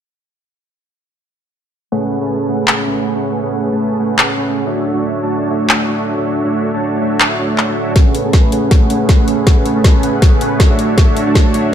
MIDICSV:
0, 0, Header, 1, 3, 480
1, 0, Start_track
1, 0, Key_signature, 3, "major"
1, 0, Tempo, 377358
1, 2442, Time_signature, 4, 2, 24, 8
1, 14936, End_track
2, 0, Start_track
2, 0, Title_t, "Supersaw synth"
2, 0, Program_c, 0, 81
2, 2441, Note_on_c, 0, 57, 89
2, 2441, Note_on_c, 0, 61, 79
2, 2442, Note_on_c, 0, 68, 80
2, 2442, Note_on_c, 0, 71, 80
2, 2442, Note_on_c, 0, 78, 96
2, 2781, Note_off_c, 0, 57, 0
2, 2781, Note_off_c, 0, 61, 0
2, 2781, Note_off_c, 0, 68, 0
2, 2781, Note_off_c, 0, 71, 0
2, 2781, Note_off_c, 0, 78, 0
2, 2813, Note_on_c, 0, 61, 80
2, 2813, Note_on_c, 0, 68, 79
2, 2814, Note_on_c, 0, 57, 87
2, 2814, Note_on_c, 0, 71, 79
2, 2814, Note_on_c, 0, 81, 100
2, 3136, Note_off_c, 0, 57, 0
2, 3136, Note_off_c, 0, 61, 0
2, 3136, Note_off_c, 0, 68, 0
2, 3136, Note_off_c, 0, 71, 0
2, 3136, Note_off_c, 0, 81, 0
2, 3161, Note_on_c, 0, 57, 83
2, 3161, Note_on_c, 0, 61, 75
2, 3161, Note_on_c, 0, 68, 77
2, 3161, Note_on_c, 0, 71, 77
2, 3161, Note_on_c, 0, 78, 91
2, 3615, Note_off_c, 0, 57, 0
2, 3615, Note_off_c, 0, 61, 0
2, 3615, Note_off_c, 0, 68, 0
2, 3615, Note_off_c, 0, 71, 0
2, 3615, Note_off_c, 0, 78, 0
2, 3641, Note_on_c, 0, 57, 84
2, 3641, Note_on_c, 0, 61, 77
2, 3641, Note_on_c, 0, 68, 77
2, 3641, Note_on_c, 0, 78, 92
2, 3642, Note_on_c, 0, 71, 77
2, 3981, Note_off_c, 0, 57, 0
2, 3981, Note_off_c, 0, 61, 0
2, 3981, Note_off_c, 0, 68, 0
2, 3981, Note_off_c, 0, 71, 0
2, 3981, Note_off_c, 0, 78, 0
2, 4012, Note_on_c, 0, 61, 74
2, 4012, Note_on_c, 0, 71, 72
2, 4013, Note_on_c, 0, 57, 78
2, 4013, Note_on_c, 0, 68, 73
2, 4013, Note_on_c, 0, 78, 90
2, 4335, Note_off_c, 0, 57, 0
2, 4335, Note_off_c, 0, 61, 0
2, 4335, Note_off_c, 0, 68, 0
2, 4335, Note_off_c, 0, 71, 0
2, 4335, Note_off_c, 0, 78, 0
2, 4361, Note_on_c, 0, 71, 80
2, 4362, Note_on_c, 0, 57, 85
2, 4362, Note_on_c, 0, 61, 77
2, 4362, Note_on_c, 0, 68, 83
2, 4362, Note_on_c, 0, 78, 98
2, 4701, Note_off_c, 0, 57, 0
2, 4701, Note_off_c, 0, 61, 0
2, 4701, Note_off_c, 0, 68, 0
2, 4701, Note_off_c, 0, 71, 0
2, 4701, Note_off_c, 0, 78, 0
2, 4733, Note_on_c, 0, 57, 86
2, 4733, Note_on_c, 0, 61, 84
2, 4733, Note_on_c, 0, 68, 80
2, 4733, Note_on_c, 0, 71, 83
2, 4733, Note_on_c, 0, 81, 98
2, 5056, Note_off_c, 0, 57, 0
2, 5056, Note_off_c, 0, 61, 0
2, 5056, Note_off_c, 0, 68, 0
2, 5056, Note_off_c, 0, 71, 0
2, 5056, Note_off_c, 0, 81, 0
2, 5081, Note_on_c, 0, 57, 83
2, 5081, Note_on_c, 0, 61, 76
2, 5081, Note_on_c, 0, 68, 76
2, 5081, Note_on_c, 0, 71, 76
2, 5081, Note_on_c, 0, 78, 90
2, 5535, Note_off_c, 0, 57, 0
2, 5535, Note_off_c, 0, 61, 0
2, 5535, Note_off_c, 0, 68, 0
2, 5535, Note_off_c, 0, 71, 0
2, 5535, Note_off_c, 0, 78, 0
2, 5560, Note_on_c, 0, 57, 84
2, 5560, Note_on_c, 0, 61, 77
2, 5560, Note_on_c, 0, 68, 75
2, 5560, Note_on_c, 0, 71, 77
2, 5560, Note_on_c, 0, 78, 97
2, 5900, Note_off_c, 0, 57, 0
2, 5900, Note_off_c, 0, 61, 0
2, 5900, Note_off_c, 0, 68, 0
2, 5901, Note_off_c, 0, 71, 0
2, 5901, Note_off_c, 0, 78, 0
2, 5931, Note_on_c, 0, 57, 81
2, 5931, Note_on_c, 0, 62, 71
2, 5931, Note_on_c, 0, 73, 76
2, 5931, Note_on_c, 0, 76, 91
2, 5932, Note_on_c, 0, 66, 74
2, 6255, Note_off_c, 0, 57, 0
2, 6255, Note_off_c, 0, 62, 0
2, 6255, Note_off_c, 0, 66, 0
2, 6255, Note_off_c, 0, 73, 0
2, 6255, Note_off_c, 0, 76, 0
2, 6280, Note_on_c, 0, 57, 86
2, 6280, Note_on_c, 0, 62, 81
2, 6280, Note_on_c, 0, 66, 84
2, 6280, Note_on_c, 0, 76, 98
2, 6281, Note_on_c, 0, 73, 77
2, 6620, Note_off_c, 0, 62, 0
2, 6621, Note_off_c, 0, 57, 0
2, 6621, Note_off_c, 0, 66, 0
2, 6621, Note_off_c, 0, 73, 0
2, 6621, Note_off_c, 0, 76, 0
2, 6651, Note_on_c, 0, 57, 88
2, 6651, Note_on_c, 0, 62, 81
2, 6651, Note_on_c, 0, 66, 83
2, 6651, Note_on_c, 0, 73, 81
2, 6651, Note_on_c, 0, 81, 96
2, 6975, Note_off_c, 0, 57, 0
2, 6975, Note_off_c, 0, 62, 0
2, 6975, Note_off_c, 0, 66, 0
2, 6975, Note_off_c, 0, 73, 0
2, 6975, Note_off_c, 0, 81, 0
2, 7000, Note_on_c, 0, 57, 83
2, 7000, Note_on_c, 0, 66, 77
2, 7000, Note_on_c, 0, 73, 77
2, 7000, Note_on_c, 0, 76, 91
2, 7001, Note_on_c, 0, 62, 75
2, 7454, Note_off_c, 0, 76, 0
2, 7455, Note_off_c, 0, 57, 0
2, 7455, Note_off_c, 0, 62, 0
2, 7455, Note_off_c, 0, 66, 0
2, 7455, Note_off_c, 0, 73, 0
2, 7480, Note_on_c, 0, 66, 79
2, 7481, Note_on_c, 0, 57, 86
2, 7481, Note_on_c, 0, 62, 77
2, 7481, Note_on_c, 0, 73, 78
2, 7481, Note_on_c, 0, 76, 94
2, 7821, Note_off_c, 0, 57, 0
2, 7821, Note_off_c, 0, 62, 0
2, 7821, Note_off_c, 0, 66, 0
2, 7821, Note_off_c, 0, 73, 0
2, 7821, Note_off_c, 0, 76, 0
2, 7852, Note_on_c, 0, 57, 81
2, 7852, Note_on_c, 0, 62, 74
2, 7852, Note_on_c, 0, 73, 74
2, 7853, Note_on_c, 0, 66, 74
2, 7853, Note_on_c, 0, 76, 89
2, 8175, Note_off_c, 0, 57, 0
2, 8175, Note_off_c, 0, 62, 0
2, 8175, Note_off_c, 0, 66, 0
2, 8175, Note_off_c, 0, 73, 0
2, 8176, Note_off_c, 0, 76, 0
2, 8200, Note_on_c, 0, 57, 91
2, 8200, Note_on_c, 0, 62, 82
2, 8200, Note_on_c, 0, 66, 80
2, 8200, Note_on_c, 0, 73, 81
2, 8200, Note_on_c, 0, 76, 98
2, 8540, Note_off_c, 0, 57, 0
2, 8540, Note_off_c, 0, 62, 0
2, 8540, Note_off_c, 0, 66, 0
2, 8540, Note_off_c, 0, 73, 0
2, 8540, Note_off_c, 0, 76, 0
2, 8571, Note_on_c, 0, 62, 83
2, 8572, Note_on_c, 0, 57, 88
2, 8572, Note_on_c, 0, 66, 80
2, 8572, Note_on_c, 0, 73, 82
2, 8572, Note_on_c, 0, 81, 95
2, 8895, Note_off_c, 0, 57, 0
2, 8895, Note_off_c, 0, 62, 0
2, 8895, Note_off_c, 0, 66, 0
2, 8895, Note_off_c, 0, 73, 0
2, 8895, Note_off_c, 0, 81, 0
2, 8920, Note_on_c, 0, 57, 84
2, 8921, Note_on_c, 0, 62, 77
2, 8921, Note_on_c, 0, 66, 77
2, 8921, Note_on_c, 0, 73, 77
2, 8921, Note_on_c, 0, 76, 96
2, 9375, Note_off_c, 0, 57, 0
2, 9375, Note_off_c, 0, 62, 0
2, 9375, Note_off_c, 0, 66, 0
2, 9375, Note_off_c, 0, 73, 0
2, 9375, Note_off_c, 0, 76, 0
2, 9400, Note_on_c, 0, 57, 85
2, 9400, Note_on_c, 0, 62, 77
2, 9400, Note_on_c, 0, 66, 81
2, 9400, Note_on_c, 0, 73, 81
2, 9400, Note_on_c, 0, 76, 94
2, 9740, Note_off_c, 0, 57, 0
2, 9740, Note_off_c, 0, 62, 0
2, 9740, Note_off_c, 0, 66, 0
2, 9740, Note_off_c, 0, 73, 0
2, 9740, Note_off_c, 0, 76, 0
2, 9772, Note_on_c, 0, 57, 82
2, 9772, Note_on_c, 0, 62, 74
2, 9772, Note_on_c, 0, 66, 74
2, 9772, Note_on_c, 0, 73, 75
2, 9772, Note_on_c, 0, 76, 89
2, 10095, Note_off_c, 0, 57, 0
2, 10095, Note_off_c, 0, 62, 0
2, 10095, Note_off_c, 0, 66, 0
2, 10095, Note_off_c, 0, 73, 0
2, 10095, Note_off_c, 0, 76, 0
2, 10119, Note_on_c, 0, 71, 79
2, 10120, Note_on_c, 0, 57, 90
2, 10120, Note_on_c, 0, 61, 82
2, 10120, Note_on_c, 0, 68, 82
2, 10120, Note_on_c, 0, 78, 97
2, 10460, Note_off_c, 0, 57, 0
2, 10460, Note_off_c, 0, 61, 0
2, 10460, Note_off_c, 0, 68, 0
2, 10460, Note_off_c, 0, 71, 0
2, 10460, Note_off_c, 0, 78, 0
2, 10491, Note_on_c, 0, 68, 84
2, 10492, Note_on_c, 0, 57, 87
2, 10492, Note_on_c, 0, 61, 79
2, 10492, Note_on_c, 0, 71, 83
2, 10492, Note_on_c, 0, 81, 99
2, 10815, Note_off_c, 0, 57, 0
2, 10815, Note_off_c, 0, 61, 0
2, 10815, Note_off_c, 0, 68, 0
2, 10815, Note_off_c, 0, 71, 0
2, 10815, Note_off_c, 0, 81, 0
2, 10842, Note_on_c, 0, 57, 86
2, 10842, Note_on_c, 0, 61, 80
2, 10842, Note_on_c, 0, 68, 79
2, 10842, Note_on_c, 0, 71, 78
2, 10842, Note_on_c, 0, 78, 94
2, 11296, Note_off_c, 0, 57, 0
2, 11296, Note_off_c, 0, 61, 0
2, 11296, Note_off_c, 0, 68, 0
2, 11296, Note_off_c, 0, 71, 0
2, 11296, Note_off_c, 0, 78, 0
2, 11322, Note_on_c, 0, 57, 87
2, 11322, Note_on_c, 0, 61, 80
2, 11322, Note_on_c, 0, 68, 81
2, 11322, Note_on_c, 0, 71, 81
2, 11323, Note_on_c, 0, 78, 96
2, 11661, Note_off_c, 0, 57, 0
2, 11661, Note_off_c, 0, 61, 0
2, 11661, Note_off_c, 0, 68, 0
2, 11661, Note_off_c, 0, 71, 0
2, 11662, Note_off_c, 0, 78, 0
2, 11693, Note_on_c, 0, 57, 81
2, 11693, Note_on_c, 0, 61, 74
2, 11693, Note_on_c, 0, 68, 76
2, 11693, Note_on_c, 0, 71, 75
2, 11693, Note_on_c, 0, 78, 92
2, 12015, Note_off_c, 0, 61, 0
2, 12015, Note_off_c, 0, 68, 0
2, 12016, Note_off_c, 0, 57, 0
2, 12016, Note_off_c, 0, 71, 0
2, 12016, Note_off_c, 0, 78, 0
2, 12042, Note_on_c, 0, 57, 90
2, 12042, Note_on_c, 0, 61, 81
2, 12042, Note_on_c, 0, 68, 81
2, 12042, Note_on_c, 0, 71, 83
2, 12042, Note_on_c, 0, 78, 101
2, 12381, Note_off_c, 0, 57, 0
2, 12381, Note_off_c, 0, 61, 0
2, 12381, Note_off_c, 0, 68, 0
2, 12381, Note_off_c, 0, 71, 0
2, 12381, Note_off_c, 0, 78, 0
2, 12412, Note_on_c, 0, 68, 83
2, 12413, Note_on_c, 0, 57, 91
2, 12413, Note_on_c, 0, 61, 86
2, 12413, Note_on_c, 0, 71, 84
2, 12413, Note_on_c, 0, 81, 101
2, 12735, Note_off_c, 0, 57, 0
2, 12735, Note_off_c, 0, 61, 0
2, 12735, Note_off_c, 0, 68, 0
2, 12735, Note_off_c, 0, 71, 0
2, 12735, Note_off_c, 0, 81, 0
2, 12761, Note_on_c, 0, 57, 85
2, 12761, Note_on_c, 0, 61, 75
2, 12761, Note_on_c, 0, 68, 76
2, 12761, Note_on_c, 0, 71, 79
2, 12761, Note_on_c, 0, 78, 94
2, 13215, Note_off_c, 0, 57, 0
2, 13215, Note_off_c, 0, 61, 0
2, 13215, Note_off_c, 0, 68, 0
2, 13215, Note_off_c, 0, 71, 0
2, 13215, Note_off_c, 0, 78, 0
2, 13241, Note_on_c, 0, 61, 78
2, 13241, Note_on_c, 0, 68, 79
2, 13241, Note_on_c, 0, 71, 82
2, 13241, Note_on_c, 0, 78, 100
2, 13242, Note_on_c, 0, 57, 87
2, 13581, Note_off_c, 0, 57, 0
2, 13581, Note_off_c, 0, 61, 0
2, 13581, Note_off_c, 0, 68, 0
2, 13581, Note_off_c, 0, 71, 0
2, 13581, Note_off_c, 0, 78, 0
2, 13612, Note_on_c, 0, 57, 84
2, 13612, Note_on_c, 0, 62, 74
2, 13612, Note_on_c, 0, 66, 76
2, 13612, Note_on_c, 0, 73, 77
2, 13612, Note_on_c, 0, 76, 89
2, 13935, Note_off_c, 0, 57, 0
2, 13935, Note_off_c, 0, 62, 0
2, 13935, Note_off_c, 0, 66, 0
2, 13935, Note_off_c, 0, 73, 0
2, 13935, Note_off_c, 0, 76, 0
2, 13962, Note_on_c, 0, 57, 89
2, 13962, Note_on_c, 0, 62, 83
2, 13962, Note_on_c, 0, 66, 83
2, 13962, Note_on_c, 0, 73, 79
2, 13962, Note_on_c, 0, 76, 101
2, 14301, Note_off_c, 0, 57, 0
2, 14301, Note_off_c, 0, 73, 0
2, 14301, Note_off_c, 0, 76, 0
2, 14302, Note_off_c, 0, 62, 0
2, 14302, Note_off_c, 0, 66, 0
2, 14332, Note_on_c, 0, 62, 85
2, 14332, Note_on_c, 0, 73, 86
2, 14333, Note_on_c, 0, 57, 89
2, 14333, Note_on_c, 0, 66, 82
2, 14333, Note_on_c, 0, 81, 101
2, 14655, Note_off_c, 0, 62, 0
2, 14655, Note_off_c, 0, 73, 0
2, 14656, Note_off_c, 0, 57, 0
2, 14656, Note_off_c, 0, 66, 0
2, 14656, Note_off_c, 0, 81, 0
2, 14681, Note_on_c, 0, 57, 85
2, 14682, Note_on_c, 0, 62, 79
2, 14682, Note_on_c, 0, 66, 79
2, 14682, Note_on_c, 0, 73, 81
2, 14682, Note_on_c, 0, 76, 96
2, 14936, Note_off_c, 0, 57, 0
2, 14936, Note_off_c, 0, 62, 0
2, 14936, Note_off_c, 0, 66, 0
2, 14936, Note_off_c, 0, 73, 0
2, 14936, Note_off_c, 0, 76, 0
2, 14936, End_track
3, 0, Start_track
3, 0, Title_t, "Drums"
3, 3402, Note_on_c, 9, 39, 108
3, 3529, Note_off_c, 9, 39, 0
3, 5321, Note_on_c, 9, 39, 111
3, 5449, Note_off_c, 9, 39, 0
3, 7241, Note_on_c, 9, 39, 111
3, 7368, Note_off_c, 9, 39, 0
3, 9160, Note_on_c, 9, 39, 111
3, 9287, Note_off_c, 9, 39, 0
3, 9640, Note_on_c, 9, 39, 61
3, 9768, Note_off_c, 9, 39, 0
3, 10121, Note_on_c, 9, 36, 95
3, 10121, Note_on_c, 9, 38, 49
3, 10121, Note_on_c, 9, 42, 79
3, 10248, Note_off_c, 9, 36, 0
3, 10248, Note_off_c, 9, 38, 0
3, 10248, Note_off_c, 9, 42, 0
3, 10361, Note_on_c, 9, 42, 67
3, 10488, Note_off_c, 9, 42, 0
3, 10600, Note_on_c, 9, 38, 48
3, 10600, Note_on_c, 9, 42, 78
3, 10601, Note_on_c, 9, 36, 91
3, 10728, Note_off_c, 9, 36, 0
3, 10728, Note_off_c, 9, 38, 0
3, 10728, Note_off_c, 9, 42, 0
3, 10841, Note_on_c, 9, 42, 67
3, 10968, Note_off_c, 9, 42, 0
3, 11081, Note_on_c, 9, 38, 47
3, 11081, Note_on_c, 9, 42, 76
3, 11082, Note_on_c, 9, 36, 99
3, 11208, Note_off_c, 9, 38, 0
3, 11208, Note_off_c, 9, 42, 0
3, 11209, Note_off_c, 9, 36, 0
3, 11321, Note_on_c, 9, 42, 65
3, 11448, Note_off_c, 9, 42, 0
3, 11561, Note_on_c, 9, 38, 49
3, 11561, Note_on_c, 9, 42, 80
3, 11562, Note_on_c, 9, 36, 91
3, 11688, Note_off_c, 9, 38, 0
3, 11688, Note_off_c, 9, 42, 0
3, 11689, Note_off_c, 9, 36, 0
3, 11801, Note_on_c, 9, 42, 66
3, 11928, Note_off_c, 9, 42, 0
3, 12041, Note_on_c, 9, 36, 96
3, 12042, Note_on_c, 9, 38, 54
3, 12042, Note_on_c, 9, 42, 81
3, 12169, Note_off_c, 9, 36, 0
3, 12169, Note_off_c, 9, 38, 0
3, 12169, Note_off_c, 9, 42, 0
3, 12282, Note_on_c, 9, 42, 68
3, 12409, Note_off_c, 9, 42, 0
3, 12521, Note_on_c, 9, 36, 91
3, 12521, Note_on_c, 9, 38, 53
3, 12521, Note_on_c, 9, 42, 80
3, 12649, Note_off_c, 9, 36, 0
3, 12649, Note_off_c, 9, 38, 0
3, 12649, Note_off_c, 9, 42, 0
3, 12761, Note_on_c, 9, 42, 68
3, 12888, Note_off_c, 9, 42, 0
3, 13001, Note_on_c, 9, 36, 98
3, 13001, Note_on_c, 9, 38, 53
3, 13001, Note_on_c, 9, 42, 79
3, 13128, Note_off_c, 9, 36, 0
3, 13128, Note_off_c, 9, 38, 0
3, 13128, Note_off_c, 9, 42, 0
3, 13242, Note_on_c, 9, 42, 69
3, 13369, Note_off_c, 9, 42, 0
3, 13481, Note_on_c, 9, 36, 91
3, 13481, Note_on_c, 9, 38, 57
3, 13481, Note_on_c, 9, 42, 80
3, 13608, Note_off_c, 9, 36, 0
3, 13609, Note_off_c, 9, 38, 0
3, 13609, Note_off_c, 9, 42, 0
3, 13722, Note_on_c, 9, 42, 66
3, 13849, Note_off_c, 9, 42, 0
3, 13961, Note_on_c, 9, 36, 100
3, 13962, Note_on_c, 9, 38, 59
3, 13962, Note_on_c, 9, 42, 80
3, 14089, Note_off_c, 9, 36, 0
3, 14089, Note_off_c, 9, 38, 0
3, 14089, Note_off_c, 9, 42, 0
3, 14202, Note_on_c, 9, 42, 68
3, 14330, Note_off_c, 9, 42, 0
3, 14441, Note_on_c, 9, 36, 92
3, 14442, Note_on_c, 9, 38, 61
3, 14442, Note_on_c, 9, 42, 78
3, 14568, Note_off_c, 9, 36, 0
3, 14570, Note_off_c, 9, 38, 0
3, 14570, Note_off_c, 9, 42, 0
3, 14681, Note_on_c, 9, 42, 67
3, 14809, Note_off_c, 9, 42, 0
3, 14936, End_track
0, 0, End_of_file